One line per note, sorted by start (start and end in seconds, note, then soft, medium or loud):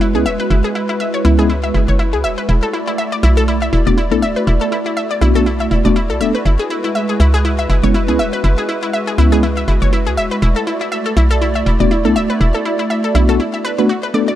0.00 0.16 F#1 medium
0.00 2.45 G#3 medium
0.00 10.38 E4 medium
0.00 0.09 E4 medium
0.00 2.45 F#4 medium
0.00 2.45 B4 loud
0.14 0.27 C#2 medium
0.14 0.25 G#3 medium
0.14 0.25 B3 medium
0.14 0.25 C#4 medium
0.14 0.25 E4 medium
0.14 0.18 G#4 medium
0.26 0.37 E1 medium
0.26 0.33 E5 loud
0.40 0.46 B4 medium
0.50 0.62 F#1 loud
0.50 0.58 E4 medium
0.64 0.68 G#4 medium
0.75 0.83 E4 medium
0.89 0.95 E4 medium
1.00 1.12 E5 medium
1.14 1.18 C#5 medium
1.25 1.72 C#2 loud
1.25 1.37 G#3 medium
1.25 1.37 B3 medium
1.25 1.37 C#4 medium
1.25 1.32 E4 loud
1.25 1.37 E4 medium
1.38 1.49 G#3 medium
1.38 1.49 B3 medium
1.38 1.49 C#4 medium
1.38 1.49 E4 loud
1.38 1.45 G#4 loud
1.50 1.57 E4 medium
1.63 1.70 E5 medium
1.74 1.86 F#1 medium
1.74 1.82 E4 medium
1.88 2.15 F#1 medium
1.88 1.94 C#5 medium
1.99 2.07 E4 medium
2.13 2.26 C#2 medium
2.13 2.17 G#4 medium
2.24 2.36 E1 medium
2.24 2.32 E5 loud
2.38 2.44 B4 medium
2.49 2.60 E1 loud
2.49 6.42 A3 medium
2.49 2.56 E4 medium
2.49 14.35 F#4 medium
2.49 6.42 D5 loud
2.63 2.66 A4 medium
2.73 2.81 E4 medium
2.87 2.93 E4 medium
2.98 3.10 E5 medium
3.12 3.16 D5 medium
3.23 3.70 B1 medium
3.23 3.31 E4 loud
3.37 3.43 A4 loud
3.48 3.56 E4 medium
3.62 3.68 E5 medium
3.73 3.85 E1 medium
3.73 3.80 E4 medium
3.86 4.13 E1 medium
3.86 3.97 A3 medium
3.86 3.97 B3 medium
3.86 3.97 D4 medium
3.86 3.97 F#4 medium
3.86 3.93 D5 medium
3.98 4.05 E4 medium
4.11 4.24 B1 medium
4.11 4.22 A3 medium
4.11 4.22 B3 medium
4.11 4.22 D4 medium
4.11 4.22 E4 medium
4.11 4.15 A4 medium
4.22 4.34 D1 medium
4.22 4.30 E5 loud
4.36 4.42 B4 medium
4.47 4.59 E1 loud
4.47 4.55 E4 medium
4.61 4.65 A4 medium
4.72 4.80 E4 medium
4.86 4.92 E4 medium
4.97 5.08 E5 medium
5.11 5.14 D5 medium
5.21 5.68 B1 loud
5.21 5.33 A3 medium
5.21 5.33 B3 medium
5.21 5.33 D4 medium
5.21 5.29 E4 loud
5.21 5.34 F#4 medium
5.35 5.45 A3 loud
5.35 5.46 B3 medium
5.35 5.46 D4 medium
5.35 5.46 F#4 loud
5.35 5.41 A4 loud
5.46 5.54 E4 medium
5.60 5.66 E5 medium
5.71 5.83 E1 medium
5.71 5.79 E4 medium
5.85 6.11 E1 medium
5.85 5.95 A3 loud
5.85 5.95 B3 medium
5.85 5.95 D4 medium
5.85 5.95 F#4 loud
5.85 5.91 D5 medium
5.96 6.04 E4 medium
6.10 6.22 B1 medium
6.10 6.13 A4 medium
6.20 6.32 D1 medium
6.20 6.34 A3 medium
6.20 6.34 B3 medium
6.20 6.34 D4 medium
6.20 6.34 A4 medium
6.20 6.28 E5 loud
6.35 6.41 B4 medium
6.45 6.57 F#1 loud
6.45 10.38 G#3 medium
6.45 6.53 E4 medium
6.45 10.38 B4 medium
6.59 6.63 G#4 medium
6.70 6.78 E4 medium
6.84 6.90 E4 medium
6.95 7.07 E5 medium
7.09 7.13 G#4 medium
7.20 7.67 C#2 loud
7.20 7.28 E4 loud
7.34 7.40 G#4 loud
7.45 7.52 E4 medium
7.59 7.65 E5 medium
7.69 7.81 F#1 medium
7.69 7.77 E4 medium
7.83 8.10 F#1 medium
7.83 7.93 G#3 medium
7.83 7.94 B3 medium
7.83 7.94 C#4 medium
7.83 7.94 E4 medium
7.83 7.89 C#5 medium
7.94 8.02 E4 medium
8.08 8.20 C#2 medium
8.08 8.18 G#3 medium
8.08 8.18 B3 medium
8.08 8.18 C#4 medium
8.08 8.19 E4 medium
8.08 8.12 G#4 medium
8.19 8.31 E1 medium
8.19 8.27 E5 loud
8.33 8.39 B4 medium
8.44 8.56 F#1 loud
8.44 8.52 E4 medium
8.58 8.61 G#4 medium
8.69 8.76 E4 medium
8.83 8.89 E4 medium
8.93 9.05 E5 medium
9.07 9.11 G#4 medium
9.18 9.65 C#2 medium
9.18 9.30 G#3 medium
9.18 9.30 B3 medium
9.18 9.30 C#4 medium
9.18 9.26 E4 loud
9.18 9.30 E4 medium
9.32 9.42 G#3 loud
9.32 9.42 B3 medium
9.32 9.42 C#4 medium
9.32 9.42 E4 loud
9.32 9.38 G#4 loud
9.43 9.51 E4 medium
9.57 9.63 E5 medium
9.68 9.80 F#1 medium
9.68 9.76 E4 medium
9.82 10.08 F#1 medium
9.82 9.88 C#5 medium
9.93 10.00 E4 medium
10.07 10.19 C#2 medium
10.07 10.10 G#4 medium
10.17 10.29 E1 medium
10.17 10.25 E5 loud
10.31 10.37 B4 medium
10.42 10.54 E1 loud
10.42 14.35 A3 medium
10.42 14.35 E4 medium
10.42 10.50 E4 medium
10.42 14.35 D5 medium
10.56 10.60 A4 medium
10.67 10.75 E4 medium
10.81 10.87 E4 medium
10.92 11.03 E5 medium
11.06 11.09 A4 medium
11.17 11.63 B1 medium
11.17 11.24 E4 loud
11.31 11.37 A4 loud
11.41 11.49 E4 medium
11.55 11.61 E5 medium
11.66 11.78 E1 medium
11.66 11.74 E4 medium
11.80 12.06 E1 medium
11.80 11.90 A3 medium
11.80 11.90 B3 medium
11.80 11.90 D4 medium
11.80 11.90 F#4 medium
11.80 11.86 D5 medium
11.91 11.99 E4 medium
12.05 12.17 B1 medium
12.05 12.15 A3 medium
12.05 12.15 B3 medium
12.05 12.15 D4 medium
12.05 12.15 E4 medium
12.05 12.09 A4 medium
12.16 12.27 D1 medium
12.16 12.23 E5 loud
12.30 12.36 B4 medium
12.40 12.52 E1 loud
12.40 12.48 E4 medium
12.54 12.58 A4 medium
12.65 12.73 E4 medium
12.79 12.85 E4 medium
12.90 13.02 E5 medium
13.04 13.08 A4 medium
13.15 13.40 B1 medium
13.15 13.27 A3 medium
13.15 13.27 B3 medium
13.15 13.27 D4 medium
13.15 13.23 E4 loud
13.15 13.27 F#4 medium
13.29 13.39 A3 loud
13.29 13.39 B3 medium
13.29 13.39 D4 medium
13.29 13.39 F#4 loud
13.29 13.35 A4 loud
13.40 13.47 E4 medium
13.54 13.60 E5 medium
13.65 13.69 B4 loud
13.78 13.89 A3 loud
13.78 13.89 B3 medium
13.78 13.89 D4 loud
13.78 13.89 F#4 loud
13.78 13.82 B4 medium
13.89 14.01 F#4 medium
14.03 14.07 B4 medium
14.14 14.27 A3 medium
14.14 14.27 B3 medium
14.14 14.27 D4 medium
14.14 14.27 A4 medium
14.14 14.26 D5 medium
14.28 14.32 D5 medium